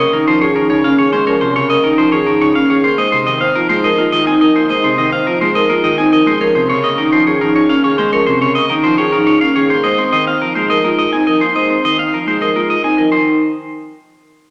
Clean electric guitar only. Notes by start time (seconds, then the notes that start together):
0.00 D#5
0.13 A#4
0.27 C5
0.41 C#5
0.56 A#4
0.70 C#5
0.84 F5
0.98 C#5
1.13 C5
1.27 C#5
1.41 C5
1.56 C#5
1.70 D#5
1.84 A#4
1.98 C5
2.12 C#5
2.27 A#4
2.41 C#5
2.55 F5
2.70 C#5
2.84 C5
2.98 D#5
3.12 C5
3.26 D#5
3.41 F5
3.55 A#4
3.69 C5
3.84 D#5
3.98 A#4
4.12 D#5
4.27 G#5
4.41 D#5
4.56 C5
4.70 D#5
4.84 C5
4.98 D#5
5.12 F5
5.27 A#4
5.41 C5
5.55 D#5
5.69 A#4
5.84 D#5
5.98 G#5
6.13 D#5
6.27 C5
6.41 C#5
6.55 C5
6.70 C#5
6.84 D#5
6.98 A#4
7.12 C5
7.27 C#5
7.41 A#4
7.56 C#5
7.69 F5
7.84 C#5
7.98 C5
8.13 C#5
8.27 C5
8.42 C#5
8.55 D#5
8.69 A#4
8.84 C5
8.98 C#5
9.12 A#4
9.27 C#5
9.41 F5
9.56 C#5
9.70 C5
9.84 D#5
9.98 C5
10.13 D#5
10.27 F5
10.42 A#4
10.55 C5
10.70 D#5
10.84 A#4
10.99 D#5
11.13 G#5
11.27 D#5
11.41 C5
11.56 D#5
11.70 C5
11.85 D#5
11.99 F5
12.14 A#4
12.28 C5
12.42 D#5
12.56 A#4
12.70 D#5
12.84 G#5
12.98 D#5
13.12 C5